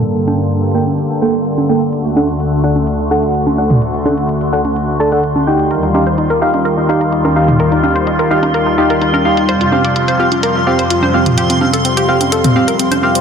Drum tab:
HH |xx-xxx-xx--xx--x|xx-xxx-xx--xx--x|xx-xxx-xx--xx--x|xx-xxx-xx--xx--x|
T2 |----------------|---------------o|----------------|---------------o|
CG |--o----o-----o--|--o----o-----o--|--o----o-----o--|--o----o-----o--|

HH |xx-xxx-xx--xx--x|xx-xxx-xx--xx--x|xx-xxx-xxx-xxx-x|
T2 |----------------|---------------o|---------o------|
CG |--o----o-----o--|--o----o-----o--|--o----o-----o--|